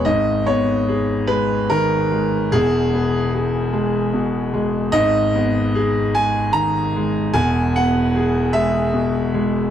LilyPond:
<<
  \new Staff \with { instrumentName = "Grand piano" } { \time 6/8 \key gis \minor \tempo 4. = 50 dis''8 cis''4 b'8 ais'4 | gis'2 r4 | dis''4. gis''8 ais''4 | gis''8 fis''4 e''4. | }
  \new Staff \with { instrumentName = "Grand piano" } { \clef bass \time 6/8 \key gis \minor <gis,, gis,>8 b8 gis'8 gis8 dis8 gis8 | <e,, e,>8 b8 gis'8 gis8 b,8 gis8 | <gis,, gis,>8 b8 gis'8 gis8 dis8 gis8 | <e,, e,>8 b8 gis'8 gis8 b,8 gis8 | }
>>